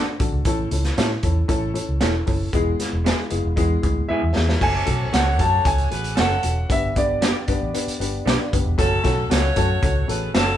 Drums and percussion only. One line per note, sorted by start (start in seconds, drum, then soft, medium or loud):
0.20 kick loud
0.20 closed hi-hat medium
0.45 kick loud
0.45 closed hi-hat medium
0.71 closed hi-hat medium
0.84 snare soft
0.84 closed hi-hat soft
0.98 snare loud
0.98 closed hi-hat medium
1.23 kick medium
1.23 closed hi-hat medium
1.49 kick medium
1.49 closed hi-hat medium
1.75 closed hi-hat medium
2.01 snare medium
2.01 closed hi-hat medium
2.27 kick medium
2.27 open hi-hat medium
2.53 kick medium
2.53 closed hi-hat medium
2.80 snare soft
2.80 closed hi-hat medium
3.06 snare loud
3.06 closed hi-hat medium
3.30 closed hi-hat medium
3.57 kick medium
3.57 closed hi-hat medium
3.83 kick medium
3.83 closed hi-hat medium
4.36 snare medium
4.49 snare medium
4.61 kick loud
4.61 crash medium
4.87 kick medium
4.87 closed hi-hat medium
5.14 snare loud
5.14 closed hi-hat medium
5.39 kick medium
5.39 closed hi-hat medium
5.65 kick loud
5.65 closed hi-hat medium
5.78 closed hi-hat soft
5.91 closed hi-hat medium
6.04 closed hi-hat soft
6.17 snare loud
6.17 closed hi-hat medium
6.43 closed hi-hat medium
6.70 kick loud
6.70 closed hi-hat medium
6.96 kick medium
6.96 closed hi-hat medium
7.22 snare loud
7.22 closed hi-hat medium
7.48 kick medium
7.48 closed hi-hat medium
7.75 closed hi-hat medium
7.88 closed hi-hat soft
8.01 closed hi-hat medium
8.27 snare loud
8.27 closed hi-hat medium
8.53 kick medium
8.53 closed hi-hat medium
8.79 kick loud
8.79 closed hi-hat medium
9.04 kick medium
9.04 snare soft
9.04 closed hi-hat medium
9.31 snare loud
9.31 closed hi-hat medium
9.56 kick medium
9.56 closed hi-hat medium
9.83 kick loud
9.83 closed hi-hat medium
10.09 closed hi-hat medium
10.35 snare loud
10.35 closed hi-hat medium